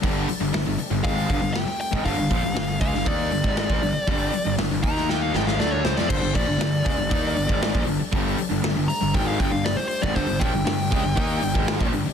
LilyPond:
<<
  \new Staff \with { instrumentName = "Lead electric guitar" } { \time 4/4 \key g \minor \tempo 4 = 118 r2 f''4 g''8 g''8 | f''4. f''8 d''2~ | d''4 r8 bes''8 g''16 f''16 g''16 f''16 d''16 cis''16 c''16 d''16 | c''8 d''2. r8 |
r4. bes''8 g''16 f''16 g''16 f''16 d''16 c''16 c''16 d''16 | c''8 g''2. r8 | }
  \new Staff \with { instrumentName = "Tonewheel organ" } { \time 4/4 \key g \minor << { a'1~ | a'1~ | a'4. f''4 a'4.~ | a'1~ |
a'2~ a'8 g'4.~ | g'1 | } \\ { d'2 c'2~ | c'1~ | c'4. bes'4 d'4.~ | d'1~ |
d'1~ | d'1 | } >> }
  \new Staff \with { instrumentName = "Tonewheel organ" } { \clef bass \time 4/4 \key g \minor g1~ | g1~ | g4. ees'4 g4.~ | g1~ |
g1~ | g1 | }
  \new Staff \with { instrumentName = "Distorted electric guitar" } { \clef bass \time 4/4 \key g \minor <g, d g>8 r16 <g, d>16 <g, d>16 <g, d>16 r16 <g, d>16 <aes, ees aes>8 <g, d>16 <g, d>8 r8 <aes, ees>16 | <g, d>16 <g, d>16 <bes, f>16 <g, d>16 <g, d>8 <cis aes>16 <g, d>16 <ees bes ees'>8 <g, d>16 <aes, ees aes>8 <bes, f>16 <g, d>16 r16 | <g, d g>8 r16 <g, d>16 <g, d>16 <g, d>16 <ees bes ees'>4 <aes, ees aes>8 <d a d'>8 <cis aes>16 <f c'>16 | <g, d>16 <g, d>16 <bes, f>16 <g, d>16 <g, d>8 <cis aes>16 <g, d>16 <ees bes ees'>8 <g, d>16 <aes, ees aes>8 <bes, f>16 <g, d>16 r16 |
<g, d g>8 r16 <g, d>16 <g, d>16 <g, d>16 r16 <g, d>16 <aes, ees aes>8 <g, d>16 <g, d>8 r8 <aes, ees>16 | <g, d>16 <g, d>16 <bes, f>16 <g, d>16 <g, d>8 <cis aes>16 <g, d>16 <ees bes ees'>8 <g, d>16 <aes, ees aes>8 <bes, f>16 <g, d>16 r16 | }
  \new Staff \with { instrumentName = "Distorted electric guitar" } { \clef bass \time 4/4 \key g \minor <g, d g>8 r16 <g, d>16 <g, d>16 <g, d>16 r16 <g, d>16 <aes, ees aes>8 <g, d>16 <g, d>8 r8 <aes, ees>16 | <g, d>16 <g, d>16 <bes, f>16 <g, d>16 <g, d>8 <cis aes>16 <g, d>16 <ees bes ees'>8 <g, d>16 <aes, ees aes>8 <bes, f>16 <g, d>16 r16 | <g, d g>8 r16 <g, d>16 <g, d>16 <g, d>16 <ees bes ees'>4 <aes, ees aes>8 <d a d'>8 <cis aes>16 <f c'>16 | <g, d>16 <g, d>16 <bes, f>16 <g, d>16 <g, d>8 <cis aes>16 <g, d>16 <ees bes ees'>8 <g, d>16 <aes, ees aes>8 <bes, f>16 <g, d>16 r16 |
<g, d g>8 r16 <g, d>16 <g, d>16 <g, d>16 r16 <g, d>16 <aes, ees aes>8 <g, d>16 <g, d>8 r8 <aes, ees>16 | <g, d>16 <g, d>16 <bes, f>16 <g, d>16 <g, d>8 <cis aes>16 <g, d>16 <ees bes ees'>8 <g, d>16 <aes, ees aes>8 <bes, f>16 <g, d>16 r16 | }
  \new Staff \with { instrumentName = "Picked electric bass" } { \clef bass \time 4/4 \key g \minor g,,8 r16 g,,16 g,,16 g,,16 r16 g,,16 aes,,8 g,,16 g,,8 r8 aes,,16 | g,,16 g,,16 bes,,16 g,,16 g,,8 cis,16 g,,16 ees,8 g,,16 aes,,8 bes,,16 g,,16 r16 | g,,8 r16 g,,16 g,,16 g,,16 ees,4 aes,,8 d,8 cis,16 f,16 | g,,16 g,,16 bes,,16 g,,16 g,,8 cis,16 g,,16 ees,8 g,,16 aes,,8 bes,,16 g,,16 r16 |
g,,8 r16 g,,16 g,,16 g,,16 r16 g,,16 aes,,8 g,,16 g,,8 r8 aes,,16 | g,,16 g,,16 bes,,16 g,,16 g,,8 cis,16 g,,16 ees,8 g,,16 aes,,8 bes,,16 g,,16 r16 | }
  \new DrumStaff \with { instrumentName = "Drums" } \drummode { \time 4/4 <hho bd>8 hho8 sn8 hho8 <hho bd>8 <hho bd>8 <hho sn>8 hho16 bd16 | <hho bd>8 <hho bd>8 sn8 <hho bd>16 sn16 <hho bd>8 hho16 bd16 <hho sn>16 bd16 hho8 | <hho bd>8 hho8 <hho sn>8 <hho bd>16 sn16 sn8 sn16 sn16 sn8 sn16 sn16 | <cymc bd>8 <hho bd>8 sn8 <hho bd>8 <hho bd>8 hho16 bd16 <hho sn>16 bd16 hho8 |
<hho bd>8 hho8 <hho sn>8 hho8 <hho bd>8 <hho bd>8 <hho sn>8 hho16 bd16 | <hho bd>8 <hho bd>8 <hho sn>8 <hho bd>8 <hho bd>8 hho16 bd16 <hho sn>16 bd16 hho8 | }
>>